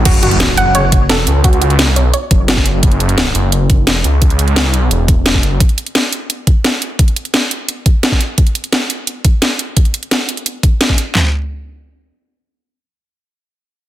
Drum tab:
CC |x---------------|----------------|----------------|----------------|
HH |xxxxx-x-x-x-x-x-|xxxxx-x-x-x-x-x-|xxxxx-x-x-x-x-x-|xxxxx-x-x-x-x-x-|
CP |----------------|----------------|----------------|----------------|
SD |----o-------o---|----o-------oo--|----o-------o---|----o-------oo--|
FT |----------------|----------------|----------------|----------------|
BD |o---------o-----|o---------o--o--|o---------o-----|o---------o--o--|

CC |----------------|----------------|----------------|----------------|
HH |xxxxx-x-x-x-x-x-|xxxxx-x-x-x-x-x-|xxxxx-x-x-x-x-x-|xxxxx-xxx-x-x-x-|
CP |----------------|----------------|----------------|----------------|
SD |----o-------o---|----o-------oo--|----o-------o---|----o-------oo--|
FT |----------------|----------------|----------------|----------------|
BD |o---------o-----|o---------o--o--|o---------o-----|o---------o--o--|

CC |----------------|----------------|
HH |----------------|----------------|
CP |x---------------|----------------|
SD |o---------------|----------------|
FT |o---------------|----------------|
BD |----------------|----------------|